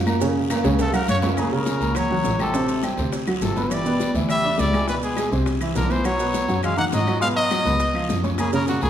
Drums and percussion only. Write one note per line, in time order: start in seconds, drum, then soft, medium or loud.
0.06 high conga medium
0.06 low agogo loud
0.06 short guiro medium
0.06 claves medium
0.06 maracas soft
0.20 cowbell loud
0.20 high conga soft
0.20 long guiro medium
0.20 maracas medium
0.36 high conga soft
0.36 low agogo medium
0.50 cowbell medium
0.50 high conga medium
0.50 high timbale loud
0.50 low agogo loud
0.50 short guiro medium
0.50 claves medium
0.50 maracas medium
0.64 cowbell medium
0.64 high conga soft
0.64 high timbale medium
0.64 short guiro medium
0.64 maracas soft
0.79 cowbell loud
0.79 high conga soft
0.79 high timbale loud
0.79 low agogo medium
0.79 long guiro medium
0.79 maracas medium
0.94 high conga soft
0.94 low agogo loud
0.94 claves medium
0.94 maracas medium
1.08 cowbell medium
1.08 high conga medium
1.08 short guiro medium
1.08 maracas medium
1.22 cowbell medium
1.22 high conga medium
1.22 low timbale loud
1.22 low agogo medium
1.22 short guiro medium
1.22 maracas soft
1.37 high bongo medium
1.37 high conga soft
1.37 high timbale medium
1.37 long guiro medium
1.37 claves medium
1.37 maracas medium
1.52 high conga soft
1.52 high timbale medium
1.66 high bongo medium
1.66 high conga medium
1.66 low timbale medium
1.66 short guiro medium
1.66 maracas medium
1.81 high bongo soft
1.81 high conga soft
1.81 high timbale medium
1.81 short guiro medium
1.81 maracas soft
1.95 high bongo medium
1.95 high conga soft
1.95 low conga medium
1.95 high timbale medium
1.95 long guiro medium
1.95 claves medium
1.95 maracas medium
2.10 high bongo soft
2.10 high conga soft
2.10 low conga medium
2.24 high bongo soft
2.24 low bongo medium
2.24 high conga medium
2.24 high timbale medium
2.24 low timbale medium
2.24 short guiro medium
2.24 maracas medium
2.39 high bongo soft
2.39 high conga medium
2.39 high timbale medium
2.39 short guiro medium
2.39 claves medium
2.39 maracas soft
2.54 high bongo medium
2.54 high conga soft
2.54 long guiro medium
2.54 maracas medium
2.69 high conga soft
2.69 high timbale medium
2.69 maracas medium
2.83 high bongo medium
2.83 high conga medium
2.83 high timbale medium
2.83 low timbale medium
2.83 short guiro medium
2.83 claves medium
2.83 maracas medium
2.97 high bongo soft
2.97 short guiro medium
2.97 maracas soft
3.12 high bongo medium
3.12 high conga soft
3.12 high timbale medium
3.12 long guiro medium
3.12 maracas medium
3.27 high bongo soft
3.27 high conga soft
3.27 high timbale medium
3.27 claves medium
3.27 maracas medium
3.42 high bongo soft
3.42 low bongo medium
3.42 high conga medium
3.42 low timbale medium
3.42 short guiro medium
3.42 maracas medium
3.56 high bongo soft
3.56 high conga medium
3.56 high timbale medium
3.56 short guiro medium
3.56 maracas soft
3.70 high bongo medium
3.70 high conga soft
3.70 high timbale medium
3.70 long guiro medium
3.70 claves medium
3.70 maracas medium
3.86 high conga soft
3.86 high timbale medium
3.86 maracas medium
4.00 high bongo medium
4.00 high conga medium
4.00 low timbale medium
4.00 short guiro medium
4.00 maracas medium
4.14 high bongo soft
4.14 high conga soft
4.14 high timbale medium
4.14 short guiro medium
4.14 maracas soft
4.29 high bongo medium
4.29 high conga soft
4.29 low conga medium
4.29 high timbale medium
4.29 long guiro medium
4.29 claves medium
4.29 maracas medium
4.43 high bongo soft
4.43 high conga soft
4.58 high bongo soft
4.58 low bongo medium
4.58 high conga medium
4.58 high timbale medium
4.58 low timbale medium
4.58 short guiro medium
4.58 maracas medium
4.73 high bongo soft
4.73 high conga medium
4.73 high timbale medium
4.73 short guiro medium
4.73 claves medium
4.73 maracas soft
4.88 high bongo medium
4.88 high conga soft
4.88 long guiro medium
4.88 maracas medium
5.03 high conga soft
5.03 high timbale medium
5.03 maracas medium
5.17 high bongo medium
5.17 high conga medium
5.17 high timbale medium
5.17 low timbale medium
5.17 short guiro medium
5.17 claves medium
5.17 maracas medium
5.31 high bongo soft
5.31 short guiro medium
5.31 maracas soft
5.46 high bongo medium
5.46 high conga soft
5.46 high timbale medium
5.46 long guiro medium
5.46 maracas medium
5.61 high bongo soft
5.61 high conga soft
5.61 high timbale medium
5.61 claves medium
5.61 maracas medium
5.75 high bongo soft
5.75 low bongo medium
5.75 high conga medium
5.75 low timbale medium
5.75 short guiro medium
5.75 maracas medium
5.90 high bongo soft
5.90 high conga medium
5.90 high timbale medium
5.90 short guiro medium
5.90 maracas soft
6.04 high bongo medium
6.04 high conga soft
6.04 high timbale medium
6.04 long guiro medium
6.04 claves medium
6.04 maracas medium
6.19 high conga soft
6.19 high timbale medium
6.19 maracas medium
6.34 high bongo medium
6.34 high conga medium
6.34 low timbale medium
6.34 short guiro medium
6.34 maracas medium
6.48 high bongo soft
6.48 high conga soft
6.48 high timbale medium
6.48 short guiro medium
6.48 maracas soft
6.63 high bongo medium
6.63 high conga soft
6.63 low conga medium
6.63 high timbale medium
6.63 long guiro medium
6.63 claves medium
6.63 maracas medium
6.78 high bongo soft
6.78 high conga soft
6.78 low conga medium
6.78 maracas medium
6.92 high bongo soft
6.92 low bongo medium
6.92 high conga medium
6.92 high timbale medium
6.92 low timbale medium
6.92 short guiro medium
6.92 maracas medium
7.07 high bongo soft
7.07 high conga medium
7.07 high timbale medium
7.07 short guiro medium
7.07 claves medium
7.07 maracas soft
7.22 high bongo medium
7.22 high conga soft
7.22 long guiro medium
7.22 maracas medium
7.36 high conga soft
7.36 high timbale medium
7.51 high bongo medium
7.51 high conga medium
7.51 high timbale medium
7.51 low timbale medium
7.51 short guiro medium
7.51 claves medium
7.51 maracas medium
7.65 high bongo soft
7.65 high conga soft
7.65 short guiro medium
7.65 maracas soft
7.80 high bongo medium
7.80 high conga soft
7.80 high timbale medium
7.80 long guiro medium
7.80 maracas medium
7.94 high bongo soft
7.94 high conga soft
7.94 high timbale medium
7.94 claves medium
8.09 high bongo soft
8.09 low bongo medium
8.09 high conga medium
8.09 low timbale medium
8.09 short guiro medium
8.09 maracas medium
8.23 high bongo soft
8.23 high conga medium
8.23 high timbale medium
8.23 short guiro medium
8.23 maracas soft
8.38 high bongo medium
8.38 high conga soft
8.38 high timbale medium
8.38 long guiro medium
8.38 claves medium
8.38 maracas medium
8.53 high conga soft
8.53 high timbale medium
8.53 maracas medium
8.67 high bongo medium
8.67 high conga medium
8.67 low timbale medium
8.67 short guiro medium
8.67 maracas medium
8.81 high bongo soft
8.81 high conga soft
8.81 high timbale medium
8.81 short guiro medium
8.81 maracas soft